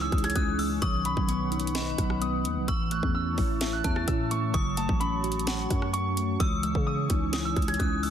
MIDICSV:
0, 0, Header, 1, 7, 480
1, 0, Start_track
1, 0, Tempo, 465116
1, 847, Time_signature, 4, 2, 24, 8
1, 8361, End_track
2, 0, Start_track
2, 0, Title_t, "Harp"
2, 0, Program_c, 0, 46
2, 12, Note_on_c, 0, 88, 83
2, 249, Note_on_c, 0, 92, 77
2, 368, Note_on_c, 0, 87, 87
2, 430, Note_off_c, 0, 88, 0
2, 610, Note_on_c, 0, 88, 74
2, 672, Note_off_c, 0, 87, 0
2, 846, Note_on_c, 0, 87, 114
2, 908, Note_off_c, 0, 88, 0
2, 1088, Note_on_c, 0, 83, 74
2, 1326, Note_on_c, 0, 85, 82
2, 1333, Note_off_c, 0, 92, 0
2, 2061, Note_off_c, 0, 87, 0
2, 2285, Note_on_c, 0, 87, 88
2, 2483, Note_off_c, 0, 83, 0
2, 2627, Note_off_c, 0, 85, 0
2, 2766, Note_on_c, 0, 88, 112
2, 2828, Note_off_c, 0, 87, 0
2, 3010, Note_on_c, 0, 90, 82
2, 3241, Note_off_c, 0, 88, 0
2, 3245, Note_on_c, 0, 88, 76
2, 3844, Note_off_c, 0, 90, 0
2, 3848, Note_on_c, 0, 90, 92
2, 4086, Note_on_c, 0, 93, 76
2, 4201, Note_off_c, 0, 88, 0
2, 4206, Note_on_c, 0, 88, 88
2, 4447, Note_on_c, 0, 85, 85
2, 4679, Note_off_c, 0, 85, 0
2, 4683, Note_on_c, 0, 85, 109
2, 4926, Note_on_c, 0, 81, 83
2, 4943, Note_off_c, 0, 90, 0
2, 5162, Note_on_c, 0, 83, 79
2, 5169, Note_off_c, 0, 93, 0
2, 5379, Note_off_c, 0, 88, 0
2, 5984, Note_off_c, 0, 85, 0
2, 6123, Note_on_c, 0, 85, 100
2, 6421, Note_off_c, 0, 81, 0
2, 6557, Note_off_c, 0, 83, 0
2, 6603, Note_on_c, 0, 87, 107
2, 6845, Note_on_c, 0, 88, 80
2, 6906, Note_off_c, 0, 87, 0
2, 7086, Note_on_c, 0, 87, 95
2, 7148, Note_off_c, 0, 88, 0
2, 7425, Note_off_c, 0, 85, 0
2, 7688, Note_on_c, 0, 88, 83
2, 7750, Note_off_c, 0, 87, 0
2, 7926, Note_on_c, 0, 92, 76
2, 8046, Note_on_c, 0, 87, 87
2, 8108, Note_off_c, 0, 88, 0
2, 8289, Note_on_c, 0, 88, 70
2, 8351, Note_off_c, 0, 87, 0
2, 8361, Note_off_c, 0, 88, 0
2, 8361, Note_off_c, 0, 92, 0
2, 8361, End_track
3, 0, Start_track
3, 0, Title_t, "Synth bell"
3, 0, Program_c, 1, 98
3, 0, Note_on_c, 1, 87, 93
3, 337, Note_off_c, 1, 87, 0
3, 366, Note_on_c, 1, 90, 87
3, 595, Note_off_c, 1, 90, 0
3, 607, Note_on_c, 1, 88, 79
3, 835, Note_off_c, 1, 88, 0
3, 844, Note_on_c, 1, 85, 120
3, 1765, Note_off_c, 1, 85, 0
3, 1805, Note_on_c, 1, 83, 81
3, 2258, Note_off_c, 1, 83, 0
3, 2769, Note_on_c, 1, 85, 104
3, 3927, Note_off_c, 1, 85, 0
3, 3967, Note_on_c, 1, 81, 77
3, 4195, Note_off_c, 1, 81, 0
3, 4685, Note_on_c, 1, 87, 101
3, 5605, Note_off_c, 1, 87, 0
3, 5649, Note_on_c, 1, 85, 78
3, 6100, Note_off_c, 1, 85, 0
3, 6607, Note_on_c, 1, 88, 106
3, 7526, Note_off_c, 1, 88, 0
3, 7565, Note_on_c, 1, 87, 96
3, 8017, Note_off_c, 1, 87, 0
3, 8043, Note_on_c, 1, 90, 83
3, 8273, Note_off_c, 1, 90, 0
3, 8287, Note_on_c, 1, 88, 81
3, 8361, Note_off_c, 1, 88, 0
3, 8361, End_track
4, 0, Start_track
4, 0, Title_t, "Analog synth pad"
4, 0, Program_c, 2, 89
4, 0, Note_on_c, 2, 61, 89
4, 0, Note_on_c, 2, 68, 78
4, 0, Note_on_c, 2, 73, 80
4, 0, Note_on_c, 2, 85, 98
4, 809, Note_off_c, 2, 85, 0
4, 827, Note_off_c, 2, 68, 0
4, 827, Note_off_c, 2, 73, 0
4, 847, Note_on_c, 2, 71, 80
4, 847, Note_on_c, 2, 78, 80
4, 847, Note_on_c, 2, 83, 97
4, 2728, Note_off_c, 2, 61, 0
4, 2748, Note_off_c, 2, 71, 0
4, 2748, Note_off_c, 2, 78, 0
4, 2748, Note_off_c, 2, 83, 0
4, 2766, Note_on_c, 2, 81, 81
4, 2767, Note_on_c, 2, 64, 87
4, 2767, Note_on_c, 2, 85, 98
4, 2768, Note_on_c, 2, 73, 81
4, 4668, Note_off_c, 2, 64, 0
4, 4668, Note_off_c, 2, 73, 0
4, 4687, Note_on_c, 2, 66, 89
4, 4687, Note_on_c, 2, 73, 81
4, 6569, Note_off_c, 2, 81, 0
4, 6588, Note_off_c, 2, 66, 0
4, 6588, Note_off_c, 2, 73, 0
4, 6606, Note_on_c, 2, 52, 90
4, 6606, Note_on_c, 2, 73, 79
4, 6607, Note_on_c, 2, 80, 79
4, 8361, Note_off_c, 2, 52, 0
4, 8361, Note_off_c, 2, 73, 0
4, 8361, Note_off_c, 2, 80, 0
4, 8361, Note_off_c, 2, 85, 0
4, 8361, End_track
5, 0, Start_track
5, 0, Title_t, "Tine electric piano"
5, 0, Program_c, 3, 4
5, 0, Control_c, 3, 64, 127
5, 0, Note_on_c, 3, 52, 97
5, 0, Note_on_c, 3, 56, 86
5, 0, Note_on_c, 3, 61, 91
5, 0, Note_on_c, 3, 63, 77
5, 0, Note_on_c, 3, 64, 99
5, 128, Note_off_c, 3, 52, 0
5, 361, Note_off_c, 3, 61, 0
5, 368, Note_off_c, 3, 56, 0
5, 373, Note_on_c, 3, 61, 92
5, 612, Note_on_c, 3, 56, 83
5, 843, Note_off_c, 3, 64, 0
5, 846, Note_off_c, 3, 63, 0
5, 847, Note_on_c, 3, 51, 94
5, 850, Note_off_c, 3, 56, 0
5, 850, Note_off_c, 3, 61, 0
5, 862, Control_c, 3, 64, 0
5, 1026, Control_c, 3, 64, 127
5, 1094, Note_on_c, 3, 54, 80
5, 1322, Note_on_c, 3, 59, 91
5, 1564, Note_on_c, 3, 63, 85
5, 1807, Note_on_c, 3, 75, 97
5, 2047, Note_off_c, 3, 51, 0
5, 2271, Note_off_c, 3, 59, 0
5, 2284, Note_on_c, 3, 59, 87
5, 2290, Note_off_c, 3, 54, 0
5, 2531, Note_on_c, 3, 54, 76
5, 2766, Note_off_c, 3, 59, 0
5, 2766, Note_off_c, 3, 63, 0
5, 2767, Note_off_c, 3, 75, 0
5, 2769, Note_off_c, 3, 54, 0
5, 2770, Note_on_c, 3, 52, 97
5, 2783, Control_c, 3, 64, 0
5, 2961, Control_c, 3, 64, 127
5, 3011, Note_on_c, 3, 57, 82
5, 3245, Note_on_c, 3, 61, 93
5, 3488, Note_on_c, 3, 64, 91
5, 3726, Note_on_c, 3, 76, 99
5, 3969, Note_off_c, 3, 52, 0
5, 4189, Note_off_c, 3, 61, 0
5, 4202, Note_on_c, 3, 61, 92
5, 4209, Note_off_c, 3, 57, 0
5, 4448, Note_on_c, 3, 57, 88
5, 4685, Note_off_c, 3, 61, 0
5, 4687, Note_off_c, 3, 76, 0
5, 4688, Note_off_c, 3, 57, 0
5, 4688, Note_off_c, 3, 64, 0
5, 4689, Note_on_c, 3, 54, 100
5, 4701, Control_c, 3, 64, 0
5, 4870, Control_c, 3, 64, 127
5, 4933, Note_on_c, 3, 57, 81
5, 5168, Note_on_c, 3, 61, 100
5, 5405, Note_on_c, 3, 66, 88
5, 5653, Note_on_c, 3, 78, 97
5, 5888, Note_off_c, 3, 54, 0
5, 6112, Note_off_c, 3, 61, 0
5, 6124, Note_on_c, 3, 61, 93
5, 6130, Note_off_c, 3, 57, 0
5, 6372, Note_on_c, 3, 57, 76
5, 6606, Note_off_c, 3, 61, 0
5, 6606, Note_off_c, 3, 66, 0
5, 6610, Note_off_c, 3, 57, 0
5, 6610, Note_off_c, 3, 78, 0
5, 6611, Note_on_c, 3, 52, 100
5, 6620, Control_c, 3, 64, 0
5, 6782, Control_c, 3, 64, 127
5, 6849, Note_on_c, 3, 56, 87
5, 7078, Note_on_c, 3, 61, 91
5, 7324, Note_on_c, 3, 63, 80
5, 7558, Note_on_c, 3, 64, 102
5, 7809, Note_off_c, 3, 52, 0
5, 8041, Note_off_c, 3, 61, 0
5, 8048, Note_off_c, 3, 56, 0
5, 8053, Note_on_c, 3, 61, 92
5, 8292, Note_on_c, 3, 56, 83
5, 8361, Note_off_c, 3, 56, 0
5, 8361, Note_off_c, 3, 61, 0
5, 8361, Note_off_c, 3, 63, 0
5, 8361, Note_off_c, 3, 64, 0
5, 8361, End_track
6, 0, Start_track
6, 0, Title_t, "808-style bass"
6, 0, Program_c, 4, 38
6, 0, Note_on_c, 4, 37, 105
6, 108, Note_off_c, 4, 37, 0
6, 127, Note_on_c, 4, 37, 105
6, 358, Note_off_c, 4, 37, 0
6, 367, Note_on_c, 4, 37, 106
6, 828, Note_off_c, 4, 37, 0
6, 847, Note_on_c, 4, 35, 112
6, 1193, Note_off_c, 4, 35, 0
6, 1207, Note_on_c, 4, 35, 99
6, 2014, Note_off_c, 4, 35, 0
6, 2048, Note_on_c, 4, 35, 107
6, 2527, Note_on_c, 4, 39, 98
6, 2543, Note_off_c, 4, 35, 0
6, 2647, Note_on_c, 4, 35, 102
6, 2662, Note_off_c, 4, 39, 0
6, 2761, Note_off_c, 4, 35, 0
6, 2768, Note_on_c, 4, 33, 109
6, 3113, Note_off_c, 4, 33, 0
6, 3127, Note_on_c, 4, 40, 105
6, 3473, Note_off_c, 4, 40, 0
6, 3488, Note_on_c, 4, 33, 107
6, 3948, Note_off_c, 4, 33, 0
6, 3967, Note_on_c, 4, 40, 103
6, 4198, Note_off_c, 4, 40, 0
6, 4208, Note_on_c, 4, 45, 102
6, 4668, Note_off_c, 4, 45, 0
6, 4687, Note_on_c, 4, 30, 111
6, 5033, Note_off_c, 4, 30, 0
6, 5047, Note_on_c, 4, 33, 100
6, 5854, Note_off_c, 4, 33, 0
6, 5887, Note_on_c, 4, 42, 101
6, 6579, Note_off_c, 4, 42, 0
6, 6607, Note_on_c, 4, 37, 109
6, 6953, Note_off_c, 4, 37, 0
6, 6966, Note_on_c, 4, 49, 101
6, 7312, Note_off_c, 4, 49, 0
6, 7327, Note_on_c, 4, 37, 108
6, 7788, Note_off_c, 4, 37, 0
6, 7807, Note_on_c, 4, 37, 104
6, 8038, Note_off_c, 4, 37, 0
6, 8048, Note_on_c, 4, 37, 108
6, 8361, Note_off_c, 4, 37, 0
6, 8361, End_track
7, 0, Start_track
7, 0, Title_t, "Drums"
7, 127, Note_on_c, 9, 36, 105
7, 127, Note_on_c, 9, 42, 47
7, 128, Note_on_c, 9, 37, 70
7, 187, Note_off_c, 9, 42, 0
7, 187, Note_on_c, 9, 42, 58
7, 230, Note_off_c, 9, 36, 0
7, 231, Note_off_c, 9, 37, 0
7, 247, Note_off_c, 9, 42, 0
7, 247, Note_on_c, 9, 37, 106
7, 247, Note_on_c, 9, 42, 68
7, 307, Note_off_c, 9, 42, 0
7, 307, Note_on_c, 9, 42, 80
7, 351, Note_off_c, 9, 37, 0
7, 367, Note_off_c, 9, 42, 0
7, 367, Note_on_c, 9, 36, 94
7, 367, Note_on_c, 9, 42, 80
7, 470, Note_off_c, 9, 36, 0
7, 470, Note_off_c, 9, 42, 0
7, 608, Note_on_c, 9, 46, 57
7, 711, Note_off_c, 9, 46, 0
7, 846, Note_on_c, 9, 42, 82
7, 847, Note_on_c, 9, 36, 124
7, 950, Note_off_c, 9, 36, 0
7, 950, Note_off_c, 9, 42, 0
7, 1085, Note_on_c, 9, 42, 81
7, 1188, Note_off_c, 9, 42, 0
7, 1207, Note_on_c, 9, 36, 106
7, 1310, Note_off_c, 9, 36, 0
7, 1327, Note_on_c, 9, 42, 77
7, 1430, Note_off_c, 9, 42, 0
7, 1567, Note_on_c, 9, 42, 46
7, 1647, Note_off_c, 9, 42, 0
7, 1647, Note_on_c, 9, 42, 61
7, 1727, Note_off_c, 9, 42, 0
7, 1727, Note_on_c, 9, 42, 75
7, 1805, Note_off_c, 9, 42, 0
7, 1805, Note_on_c, 9, 42, 83
7, 1808, Note_on_c, 9, 38, 123
7, 1908, Note_off_c, 9, 42, 0
7, 1911, Note_off_c, 9, 38, 0
7, 2047, Note_on_c, 9, 36, 107
7, 2048, Note_on_c, 9, 37, 71
7, 2048, Note_on_c, 9, 42, 83
7, 2151, Note_off_c, 9, 36, 0
7, 2151, Note_off_c, 9, 37, 0
7, 2151, Note_off_c, 9, 42, 0
7, 2168, Note_on_c, 9, 37, 102
7, 2271, Note_off_c, 9, 37, 0
7, 2287, Note_on_c, 9, 42, 81
7, 2390, Note_off_c, 9, 42, 0
7, 2529, Note_on_c, 9, 42, 75
7, 2632, Note_off_c, 9, 42, 0
7, 2767, Note_on_c, 9, 36, 126
7, 2767, Note_on_c, 9, 42, 82
7, 2870, Note_off_c, 9, 36, 0
7, 2870, Note_off_c, 9, 42, 0
7, 3005, Note_on_c, 9, 42, 83
7, 3108, Note_off_c, 9, 42, 0
7, 3127, Note_on_c, 9, 36, 100
7, 3230, Note_off_c, 9, 36, 0
7, 3485, Note_on_c, 9, 46, 57
7, 3488, Note_on_c, 9, 36, 93
7, 3588, Note_off_c, 9, 46, 0
7, 3591, Note_off_c, 9, 36, 0
7, 3724, Note_on_c, 9, 42, 87
7, 3727, Note_on_c, 9, 38, 126
7, 3827, Note_off_c, 9, 42, 0
7, 3830, Note_off_c, 9, 38, 0
7, 3967, Note_on_c, 9, 36, 105
7, 3967, Note_on_c, 9, 42, 76
7, 4070, Note_off_c, 9, 36, 0
7, 4070, Note_off_c, 9, 42, 0
7, 4088, Note_on_c, 9, 37, 102
7, 4191, Note_off_c, 9, 37, 0
7, 4207, Note_on_c, 9, 36, 96
7, 4207, Note_on_c, 9, 42, 80
7, 4310, Note_off_c, 9, 42, 0
7, 4311, Note_off_c, 9, 36, 0
7, 4449, Note_on_c, 9, 42, 75
7, 4552, Note_off_c, 9, 42, 0
7, 4687, Note_on_c, 9, 36, 122
7, 4687, Note_on_c, 9, 42, 84
7, 4790, Note_off_c, 9, 36, 0
7, 4790, Note_off_c, 9, 42, 0
7, 4925, Note_on_c, 9, 42, 81
7, 5028, Note_off_c, 9, 42, 0
7, 5047, Note_on_c, 9, 36, 100
7, 5150, Note_off_c, 9, 36, 0
7, 5167, Note_on_c, 9, 42, 77
7, 5271, Note_off_c, 9, 42, 0
7, 5408, Note_on_c, 9, 42, 44
7, 5487, Note_off_c, 9, 42, 0
7, 5487, Note_on_c, 9, 42, 60
7, 5567, Note_off_c, 9, 42, 0
7, 5567, Note_on_c, 9, 42, 75
7, 5645, Note_off_c, 9, 42, 0
7, 5645, Note_on_c, 9, 42, 82
7, 5648, Note_on_c, 9, 38, 127
7, 5748, Note_off_c, 9, 42, 0
7, 5751, Note_off_c, 9, 38, 0
7, 5887, Note_on_c, 9, 36, 106
7, 5888, Note_on_c, 9, 37, 72
7, 5888, Note_on_c, 9, 42, 81
7, 5991, Note_off_c, 9, 36, 0
7, 5991, Note_off_c, 9, 37, 0
7, 5991, Note_off_c, 9, 42, 0
7, 6008, Note_on_c, 9, 37, 101
7, 6111, Note_off_c, 9, 37, 0
7, 6127, Note_on_c, 9, 42, 77
7, 6230, Note_off_c, 9, 42, 0
7, 6369, Note_on_c, 9, 42, 74
7, 6472, Note_off_c, 9, 42, 0
7, 6606, Note_on_c, 9, 42, 80
7, 6607, Note_on_c, 9, 36, 127
7, 6710, Note_off_c, 9, 36, 0
7, 6710, Note_off_c, 9, 42, 0
7, 6845, Note_on_c, 9, 42, 79
7, 6948, Note_off_c, 9, 42, 0
7, 6967, Note_on_c, 9, 36, 101
7, 7070, Note_off_c, 9, 36, 0
7, 7325, Note_on_c, 9, 42, 79
7, 7327, Note_on_c, 9, 36, 91
7, 7428, Note_off_c, 9, 42, 0
7, 7431, Note_off_c, 9, 36, 0
7, 7564, Note_on_c, 9, 42, 82
7, 7566, Note_on_c, 9, 38, 127
7, 7667, Note_off_c, 9, 42, 0
7, 7670, Note_off_c, 9, 38, 0
7, 7807, Note_on_c, 9, 36, 103
7, 7807, Note_on_c, 9, 37, 69
7, 7807, Note_on_c, 9, 42, 48
7, 7867, Note_off_c, 9, 42, 0
7, 7867, Note_on_c, 9, 42, 57
7, 7910, Note_off_c, 9, 36, 0
7, 7910, Note_off_c, 9, 37, 0
7, 7927, Note_off_c, 9, 42, 0
7, 7927, Note_on_c, 9, 42, 69
7, 7928, Note_on_c, 9, 37, 101
7, 7987, Note_off_c, 9, 42, 0
7, 7987, Note_on_c, 9, 42, 79
7, 8031, Note_off_c, 9, 37, 0
7, 8047, Note_on_c, 9, 36, 91
7, 8048, Note_off_c, 9, 42, 0
7, 8048, Note_on_c, 9, 42, 77
7, 8151, Note_off_c, 9, 36, 0
7, 8151, Note_off_c, 9, 42, 0
7, 8289, Note_on_c, 9, 46, 59
7, 8361, Note_off_c, 9, 46, 0
7, 8361, End_track
0, 0, End_of_file